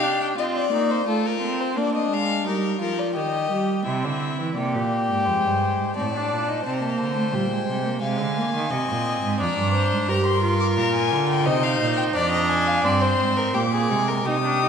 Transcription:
Already playing: violin G4 F5
0.03 viola D4
0.21 violin G5
0.38 viola C4, violin F4 D#5
0.56 violin D5
0.72 viola A#3, violin D#4
0.91 violin C5
1.07 viola A3, violin F4 A4
1.26 violin A#4
1.42 viola C4
1.61 violin C5
1.76 viola A#3, violin D4 D5
1.95 violin D#5
2.11 viola G#3, violin F5
2.46 viola G3, violin D#4 A#4
2.81 viola F3, violin F4 A#4
2.99 violin D5
3.16 viola D#3, violin G4 D#5
3.52 viola G3
3.86 cello C3, viola C4, violin E4 E5
4.04 cello D3
4.40 cello E3
4.57 cello C3, viola A#3, violin G4 D5
4.74 cello A#2
5.09 cello G#2
5.26 cello F2, viola G#3, violin C5
5.44 cello G2
5.79 cello G#2
5.96 cello A2, viola C4, violin D5 A5
6.14 viola D4
6.32 cello A#2
6.49 viola D#4
6.65 cello C3, viola C4, violin C5 A5
6.74 violin A#5
6.82 viola A#3, violin A5
6.89 violin A#5
6.97 cello D3, violin A5
7.06 violin A#5
7.14 viola A3, violin A5
7.34 cello A#2, viola G3, violin G5
7.51 viola G#3
7.68 cello C3
7.86 viola A#3
8.03 cello C3, viola G#3, violin F5 G#5
8.20 cello D3
8.38 viola A#3
8.54 cello D#3
8.71 cello C3, viola C4, violin D#5
8.89 cello A#2
9.23 cello G#2
9.40 cello F2, viola D4, violin D5 A#5
9.57 cello G2
9.74 violin C5
9.91 cello G#2
10.08 cello G2, viola G4, violin A#4 A#5
10.26 violin C6
10.43 viola F4
10.61 violin D6
10.77 cello A#2, violin A#5
10.95 violin G#5
11.12 cello D3
11.29 violin G5
11.46 cello C3, viola D#4, violin C5 D#5
11.63 violin F5
11.81 cello A#2
11.97 violin G5
12.15 cello F2, viola D4, violin D5 A#5
12.32 violin D#5
12.49 violin G#5
12.67 violin F5
12.84 cello G2, viola C4, violin D5 C6
13.02 violin C5
13.20 cello G#2
13.36 violin A#4
13.54 cello A#2, viola A#3, violin G4 D6
13.72 violin G#4
13.90 cello C3, viola G#3
14.08 violin A#4
14.26 cello C3, viola D#4, violin G4 D#6
14.45 viola D4
14.63 viola D#4

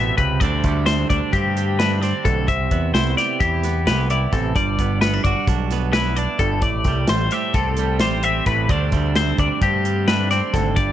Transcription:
Already playing: picked electric bass A1, clean electric guitar B2 G3 C4 G4 E5
0.18 picked electric bass C#2, clean electric guitar C3 B4, kick, closed hi-hat
0.40 picked electric bass D2, clean electric guitar D2 D3 G3 C4 D5, kick, closed hi-hat
0.45 clean electric guitar D4
0.64 picked electric bass D2, clean electric guitar G3, kick, closed hi-hat
0.86 clean electric guitar C4 C5, snare, closed hi-hat
1.10 picked electric bass D2, clean electric guitar D4 D5, kick, closed hi-hat
1.33 picked electric bass G2, clean electric guitar C4 G4, kick, closed hi-hat
1.57 clean electric guitar G3, closed hi-hat
1.79 clean electric guitar D4 B4, snare, closed hi-hat
2.02 clean electric guitar C4 D5, snare, closed hi-hat
2.24 picked electric bass B1, clean electric guitar D2 A4, kick, closed hi-hat
2.48 picked electric bass C2, clean electric guitar C3 E5, kick, closed hi-hat
2.71 picked electric bass E2, clean electric guitar B3, kick, closed hi-hat
2.94 picked electric bass C2, clean electric guitar E4 C5, snare, closed hi-hat
3.17 clean electric guitar G4 D5, snare, closed hi-hat
3.40 picked electric bass E2, clean electric guitar E4 G4, kick, closed hi-hat
3.63 clean electric guitar B3, snare, closed hi-hat
3.87 picked electric bass C2, clean electric guitar G4 B4, snare, closed hi-hat
4.10 clean electric guitar E4 D5, closed hi-hat
4.33 picked electric bass A1, clean electric guitar C3 A4, kick, snare, closed hi-hat
4.56 picked electric bass G1, clean electric guitar G2 D5, kick, closed hi-hat
4.79 picked electric bass G1, clean electric guitar B3, kick, closed hi-hat
5.01 clean electric guitar B3 B4, snare, closed hi-hat
5.14 clean electric guitar D4
5.24 picked electric bass G1, clean electric guitar F#4 D5, kick, closed hi-hat
5.47 picked electric bass B1, clean electric guitar D4, kick, snare, closed hi-hat
5.71 clean electric guitar B3, snare, closed hi-hat
5.93 clean electric guitar E4 B4, snare, closed hi-hat
6.16 clean electric guitar D4 D5, closed hi-hat
6.39 picked electric bass G1, clean electric guitar G2 A4, kick, closed hi-hat
6.62 picked electric bass A1, clean electric guitar A2 D5, kick, closed hi-hat
6.84 picked electric bass C2, clean electric guitar G3, kick, snare, closed hi-hat
7.07 picked electric bass A1, clean electric guitar C4 C5, snare, closed hi-hat
7.31 clean electric guitar G4 E5, snare, closed hi-hat
7.54 picked electric bass C2, clean electric guitar C4 A4, kick, snare, closed hi-hat
7.77 clean electric guitar G3, closed hi-hat
8.00 picked electric bass A1, clean electric guitar G4 C5, snare, closed hi-hat
8.23 clean electric guitar C4 E5, closed hi-hat
8.46 picked electric bass A1, clean electric guitar A2 B4, kick, snare, closed hi-hat
8.69 clean electric guitar D2 D3 G3 C4 D4 D5, picked electric bass D2, kick, closed hi-hat
8.92 picked electric bass D2, clean electric guitar G3, kick, snare, closed hi-hat
9.15 clean electric guitar C4 C5, snare, closed hi-hat
9.38 picked electric bass D2, clean electric guitar D4 D5, kick, closed hi-hat
9.62 picked electric bass G2, clean electric guitar C4 G4, kick, closed hi-hat
9.85 clean electric guitar G3, closed hi-hat
10.08 clean electric guitar D4 B4, snare, closed hi-hat
10.31 clean electric guitar C4 D5, snare, closed hi-hat
10.54 picked electric bass G#1, clean electric guitar D2 A4, kick, snare, closed hi-hat
10.76 picked electric bass G1, clean electric guitar G2 D5, kick, closed hi-hat

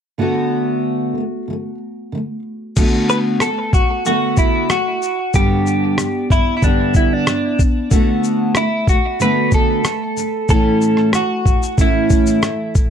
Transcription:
0.18 steel-string acoustic guitar D3 A3 B3 F#4
1.15 steel-string acoustic guitar D3 A3
1.48 steel-string acoustic guitar D3 A3
2.12 steel-string acoustic guitar D3 A3
2.76 steel-string acoustic guitar D3 A3 B3 F#4, kick, crash, shaker
3.09 clean electric guitar B4, shaker
3.40 steel-string acoustic guitar D3 A3, clean electric guitar A4, cross-stick, shaker
3.73 steel-string acoustic guitar D3 A3, clean electric guitar F#4, kick, shaker
4.05 steel-string acoustic guitar D3 A3 B3 F#4, clean electric guitar F#4, shaker
4.37 clean electric guitar E4, kick, shaker
4.69 steel-string acoustic guitar D3 A3, clean electric guitar F#4, cross-stick, shaker
5.02 shaker
5.34 steel-string acoustic guitar G2 D3 G3 B3 D4 G4, clean electric guitar G4, kick, shaker
5.67 shaker
5.98 steel-string acoustic guitar G2 D3 G3, cross-stick, shaker
6.30 steel-string acoustic guitar G2 D3 G3, clean electric guitar E4, kick, shaker
6.57 clean electric guitar E4
6.62 steel-string acoustic guitar G2 D3 G3 B3 D4 G4, clean electric guitar D4, kick, shaker
6.94 clean electric guitar E4, kick, shaker
7.13 clean electric guitar D4
7.26 steel-string acoustic guitar G2 D3 G3, cross-stick, shaker
7.59 kick, shaker
7.90 steel-string acoustic guitar D3 A3 B3 F#4, kick, shaker
8.24 shaker
8.55 steel-string acoustic guitar D3 A3, clean electric guitar E4, cross-stick, shaker
8.87 steel-string acoustic guitar D3 A3, clean electric guitar F#4, kick, shaker
9.19 steel-string acoustic guitar D3 A3 B3 F#4, clean electric guitar B4, shaker
9.52 clean electric guitar A4, kick, shaker
9.84 steel-string acoustic guitar D3 A3, cross-stick, shaker
10.16 steel-string acoustic guitar D3 A3, shaker
10.49 steel-string acoustic guitar A2 E3 A3 C#4 E4, clean electric guitar A4, kick, shaker
10.82 shaker
10.97 cross-stick
11.13 steel-string acoustic guitar A2 E3, clean electric guitar F#4, cross-stick, shaker
11.45 steel-string acoustic guitar A2 E3, kick, shaker
11.63 shaker
11.77 steel-string acoustic guitar A2 E3 A3 C#4 E4, clean electric guitar E4, kick, shaker
12.10 kick, shaker
12.27 shaker
12.42 steel-string acoustic guitar A2 E3, cross-stick, shaker
12.75 kick, shaker

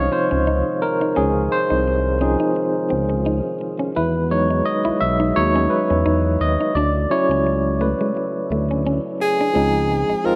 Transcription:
Already playing: tine electric piano C3 F3 D#4 C5 C#5 D#5 F5, tonewheel organ D#3 G#3 D#4 F4
0.11 tine electric piano F3 C4 D#4 C5, muted clean electric guitar stroke
0.31 analog synth bass C#2, clean electric guitar C#4
0.47 clean electric guitar D#4
0.82 tine electric piano A#4, muted clean electric guitar stroke
1.01 clean electric guitar D#4
1.16 analog synth bass C#2, clean electric guitar C#4, tine electric piano G#4
1.52 tine electric piano C5, muted clean electric guitar stroke
1.70 analog synth bass C2, clean electric guitar D#4
1.88 muted clean electric guitar stroke
2.21 tine electric piano F3 C4 D#4 G#4, clean electric guitar C#4
2.40 clean electric guitar D#4
2.56 muted clean electric guitar stroke
2.90 analog synth bass C#2, clean electric guitar C4
3.10 clean electric guitar C#4
3.26 clean electric guitar D#4
3.61 muted clean electric guitar stroke
3.79 clean electric guitar C#4
3.95 analog synth bass E2, tonewheel organ D#3 G#3 B3 F#4, clean electric guitar E4, tine electric piano B4
4.30 tine electric piano F#3 G#3 D#4 C#5, muted clean electric guitar stroke
4.50 clean electric guitar D#4
4.66 tine electric piano D#5
4.85 analog synth bass B1, clean electric guitar E4
5.00 analog synth bass B1, tine electric piano E5, muted clean electric guitar stroke
5.20 clean electric guitar D#4
5.36 analog synth bass D#2, tine electric piano F#3 G#3 D#4 C#5
5.56 clean electric guitar C#4
5.70 tine electric piano B4, muted clean electric guitar stroke
5.90 analog synth bass E2, clean electric guitar C#4
6.06 analog synth bass E2, clean electric guitar D#4
6.41 analog synth bass D#2, tine electric piano D#5, muted clean electric guitar stroke
6.61 clean electric guitar D#4
6.74 analog synth bass D2, tonewheel organ C#3 F#3 A3 E4, clean electric guitar D4, tine electric piano D5
7.10 tine electric piano F#3 C#4 E4 C#5, muted clean electric guitar stroke
7.29 analog synth bass C#2, clean electric guitar C#4
7.47 muted clean electric guitar stroke
7.81 clean electric guitar A3, tine electric piano B4
8.01 clean electric guitar G#3
8.17 muted clean electric guitar stroke
8.51 analog synth bass D2, clean electric guitar A3
8.71 clean electric guitar C#4
8.87 clean electric guitar C#4
9.20 tenor saxophone G#4, muted clean electric guitar stroke
9.41 clean electric guitar D4
9.53 analog synth bass C#2, tine electric piano F3 G#3 C4 D#4, clean electric guitar C#4
9.92 muted clean electric guitar stroke
10.09 analog synth bass G#1, clean electric guitar D#4
10.24 analog synth bass G#1, tine electric piano F3 G#3 C4 F4, tenor saxophone A#4

